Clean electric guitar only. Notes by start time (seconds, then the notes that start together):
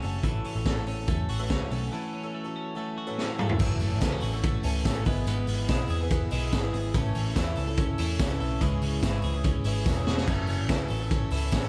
Already playing: C#4 F#4
0.03 A3
0.24 E3
0.45 C#4
0.66 A3
0.87 C#4
1.08 A3
1.29 F#4
1.51 C#4
1.71 A3
1.93 E3
2.14 C#4
2.34 A3
2.56 C#4
2.77 A3
2.98 F#4
3.18 C#4
3.39 A3
3.60 E3
3.81 A3
4.02 B3
4.12 C#4
4.22 F#4
4.43 A3
4.64 C#4
4.86 A3
5.07 B3
5.28 B3
5.49 B3
5.69 E4
5.90 G#4
6.12 B3
6.32 E4
6.53 B3
6.73 G#4
6.95 C#4
7.15 C#4
7.36 E4
7.57 A4
7.78 C#4
7.99 E4
8.20 C#4
8.40 A4
8.62 G#3
8.82 C#4
9.03 E4
9.24 G#4
9.45 C#4
9.66 E4
9.86 C#4
10.07 F#4
10.18 G#4
10.28 C#4
10.49 C#4
10.70 E4
10.90 A4
11.11 C#4
11.32 E4
11.53 C#4